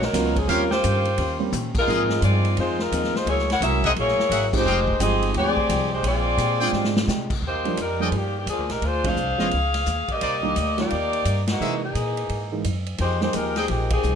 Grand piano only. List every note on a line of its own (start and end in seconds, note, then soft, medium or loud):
0.14 0.34 F#3 medium
0.14 0.34 A#3 medium
0.14 0.34 B3 medium
0.14 0.34 C#4 medium
0.14 0.34 F4 medium
0.48 0.68 G3 soft
0.48 0.69 A#3 soft
0.48 0.69 C4 soft
0.48 0.69 C#4 soft
0.48 0.69 F4 medium
1.39 1.51 G3 medium
1.39 1.51 A#3 medium
1.39 1.51 C4 medium
1.39 1.51 C#4 medium
1.39 1.51 G4 medium
1.87 2.84 A#3 medium
1.87 2.84 C4 medium
1.87 2.84 D#4 medium
1.87 2.84 F4 medium
1.87 2.84 G#4 medium
3.62 3.81 G#3 medium
3.62 3.81 A#3 medium
3.62 3.82 C#4 soft
3.62 3.82 E4 soft
3.62 3.82 F#4 medium
4.53 4.64 G#3 medium
4.53 4.64 C4 medium
4.53 4.64 D#4 medium
4.53 4.64 F4 medium
4.53 4.64 G4 medium
5.00 5.52 G#3 medium
5.00 5.52 C4 medium
5.00 5.53 D#4 medium
5.00 5.53 F4 medium
5.00 5.53 G5 medium
6.61 7.06 G#3 medium
6.61 7.06 C4 medium
6.61 7.06 D4 medium
6.61 7.06 F4 medium
6.61 7.06 G5 medium
7.65 7.77 F3 medium
7.65 7.77 G3 soft
7.65 7.77 A#3 soft
7.65 7.77 D4 medium
8.00 8.11 F3 medium
8.00 8.11 G3 soft
8.00 8.11 A#3 soft
8.00 8.12 D4 medium
9.04 9.16 F3 soft
9.04 9.16 G#3 soft
9.04 9.16 C4 soft
9.04 9.16 D4 medium
9.38 9.50 F3 medium
9.38 9.50 G#3 medium
9.38 9.50 B3 medium
9.38 9.50 C#4 medium
10.43 10.55 D#3 medium
10.43 10.55 G3 medium
10.43 10.55 A#3 medium
10.43 10.55 D4 medium
10.77 10.89 D#3 medium
10.77 10.89 G3 medium
10.77 10.90 A#3 medium
10.77 10.90 F4 medium
11.60 11.81 E3 medium
11.60 11.81 G#3 soft
11.60 11.81 A#3 soft
11.60 11.81 D#4 medium
12.52 12.63 E3 medium
12.52 12.63 G#3 soft
12.52 12.63 A#3 soft
12.52 12.64 D#4 medium
13.22 13.33 G3 medium
13.22 13.33 G#3 soft
13.22 13.33 A#3 medium
13.22 13.33 D#4 medium